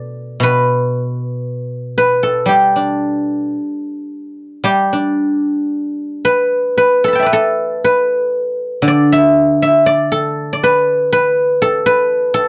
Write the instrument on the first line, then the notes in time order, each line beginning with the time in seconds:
guzheng
Already playing: B2 A4 B4 D5
0.40 B2 B4
1.98 B4
2.23 A4
2.46 G3 G4
2.76 D4
4.64 G3 G4
4.93 D4
6.25 B4
6.78 B4
7.04 A4 B5
7.13 G5 A5
7.19 D5 E5
7.26 B4
7.33 A4
7.84 B4
8.82 D3
8.88 D5
9.12 E5
9.62 E5
9.86 D5
10.12 A4
10.53 D5
10.63 B4
11.12 B4
11.62 A4
11.86 B4
12.34 A4